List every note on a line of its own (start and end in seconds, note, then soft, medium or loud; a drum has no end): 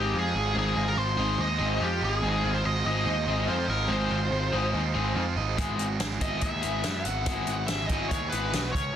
0.00 0.13 G#1 medium
0.00 0.20 G#3 medium
0.00 0.55 G#3 medium
0.00 0.20 C4 medium
0.00 1.59 C4 medium
0.00 0.20 D#4 medium
0.00 0.13 F4 medium
0.00 0.16 G4 medium
0.00 0.20 G#4 medium
0.00 0.97 C5 medium
0.00 0.34 D#5 medium
0.13 0.34 F2 medium
0.13 0.76 F4 medium
0.19 0.55 G#4 medium
0.34 0.54 G#1 medium
0.34 1.18 D#5 medium
0.55 0.75 G#1 medium
0.55 0.82 G#3 medium
0.55 2.23 G#3 medium
0.55 0.83 C4 medium
0.55 0.83 D#4 medium
0.55 0.83 G#4 medium
0.55 0.89 G#4 medium
0.76 0.96 G#1 medium
0.76 1.80 F4 medium
0.88 0.97 A#4 medium
0.97 1.17 G#1 medium
0.97 1.40 C5 medium
0.97 1.39 C5 medium
1.18 1.38 G#1 medium
1.18 1.46 G#3 medium
1.18 1.46 C4 medium
1.18 1.45 D#4 medium
1.18 1.45 G#4 medium
1.18 2.01 D#5 medium
1.38 1.58 D#2 medium
1.38 2.63 C5 medium
1.38 1.83 D#5 medium
1.59 1.79 G#1 medium
1.59 1.87 G#3 medium
1.59 3.26 C4 medium
1.59 1.87 C4 medium
1.59 1.87 D#4 medium
1.59 1.87 G#4 medium
1.80 2.00 F2 medium
1.80 2.43 F4 medium
1.80 2.03 G4 medium
2.01 2.22 G#1 medium
2.01 2.15 G4 medium
2.01 2.84 D#5 medium
2.15 2.57 G#4 medium
2.22 2.43 G#1 medium
2.22 2.50 G#3 medium
2.22 3.89 G#3 medium
2.22 2.50 C4 medium
2.22 2.50 D#4 medium
2.22 2.50 G#4 medium
2.43 2.64 G#1 medium
2.43 3.46 F4 medium
2.54 2.65 C5 medium
2.64 2.85 G#1 medium
2.64 3.04 C5 medium
2.64 2.85 D#5 medium
2.85 3.05 G#1 medium
2.85 3.14 G#3 medium
2.85 3.14 C4 medium
2.85 3.14 D#4 medium
2.85 3.13 G#4 medium
2.85 3.67 D#5 medium
2.85 3.45 D#5 medium
3.05 3.26 D#2 medium
3.05 4.11 C5 medium
3.26 3.47 G#1 medium
3.26 3.56 G#3 medium
3.26 4.32 C4 medium
3.26 3.55 C4 medium
3.26 3.55 D#4 medium
3.26 3.55 G#4 medium
3.47 3.67 F2 medium
3.47 4.10 F4 medium
3.47 3.70 C5 medium
3.68 3.88 G#1 medium
3.68 3.91 A#4 medium
3.68 4.52 D#5 medium
3.88 4.09 G#1 medium
3.88 4.17 G#3 medium
3.88 5.58 G#3 medium
3.88 4.17 C4 medium
3.88 4.17 D#4 medium
3.88 4.18 G#4 medium
3.88 4.69 C5 medium
4.10 4.31 G#1 medium
4.10 5.15 F4 medium
4.31 4.52 G#1 medium
4.31 4.73 C5 medium
4.52 4.73 G#1 medium
4.52 4.80 G#3 medium
4.52 4.80 C4 medium
4.52 4.80 D#4 medium
4.52 4.80 G#4 medium
4.52 5.35 D#5 medium
4.73 4.94 D#2 medium
4.73 5.58 C5 medium
4.94 5.15 G#1 medium
4.94 5.23 G#3 medium
4.94 5.58 C4 medium
4.94 5.23 C4 medium
4.94 5.22 D#4 medium
4.94 5.22 G#4 loud
5.15 5.36 F2 medium
5.15 5.58 F4 medium
5.36 5.57 G#1 medium
5.36 5.58 D#5 medium
5.57 5.78 G#1 medium
5.57 5.85 G#3 medium
5.57 6.87 G#3 medium
5.57 5.85 B3 medium
5.57 5.85 E4 medium
5.57 5.86 G#4 medium
5.57 kick loud
5.57 closed hi-hat medium
5.79 5.98 G#1 medium
5.79 6.83 F#4 medium
5.79 closed hi-hat medium
5.99 6.20 G#1 medium
5.99 6.42 G#4 medium
5.99 snare loud
5.99 closed hi-hat medium
6.21 6.41 G#1 medium
6.21 6.49 G#3 medium
6.21 6.49 B3 medium
6.21 6.49 E4 medium
6.21 6.48 G#4 medium
6.21 6.42 D#5 medium
6.21 7.04 E5 medium
6.21 kick medium
6.21 closed hi-hat medium
6.41 6.62 D#2 medium
6.41 7.50 G#4 medium
6.41 7.05 E5 medium
6.41 kick loud
6.41 closed hi-hat medium
6.62 6.83 G#1 medium
6.62 6.91 G#3 medium
6.62 6.91 B3 medium
6.62 7.69 B3 medium
6.62 6.90 E4 medium
6.62 6.90 G#4 medium
6.62 closed hi-hat medium
6.84 7.04 F#2 medium
6.84 7.45 F#4 medium
6.84 snare loud
6.84 closed hi-hat medium
7.05 7.25 G#1 medium
7.05 7.89 E5 medium
7.05 7.66 F#5 medium
7.05 closed hi-hat medium
7.25 7.46 G#1 medium
7.25 7.53 G#3 medium
7.25 8.56 G#3 medium
7.25 7.53 B3 medium
7.25 7.54 E4 medium
7.25 7.54 G#4 medium
7.25 kick loud
7.25 closed hi-hat medium
7.47 7.67 G#1 medium
7.47 8.52 F#4 medium
7.47 closed hi-hat medium
7.67 7.89 G#1 medium
7.67 8.11 G#4 medium
7.67 7.86 E5 medium
7.67 snare loud
7.67 closed hi-hat medium
7.86 8.10 G#1 medium
7.86 8.17 E4 medium
7.86 8.17 G#4 medium
7.86 8.07 D#5 medium
7.86 8.74 E5 medium
7.86 kick medium
7.86 closed hi-hat medium
7.90 8.17 G#3 medium
7.90 8.17 B3 medium
8.08 8.31 D#2 medium
8.08 8.96 G#4 medium
8.08 8.29 C#5 medium
8.08 kick loud
8.08 closed hi-hat medium
8.30 8.52 G#1 medium
8.30 8.74 B3 medium
8.30 8.60 B3 medium
8.30 8.59 E4 medium
8.30 8.59 G#4 loud
8.30 8.72 B4 medium
8.30 closed hi-hat medium
8.34 8.60 G#3 medium
8.53 8.73 B1 medium
8.53 8.74 F#4 medium
8.53 snare loud
8.53 closed hi-hat medium
8.72 8.93 C#2 medium
8.72 8.95 C#4 medium
8.72 8.96 C#5 medium
8.72 kick loud
8.72 closed hi-hat medium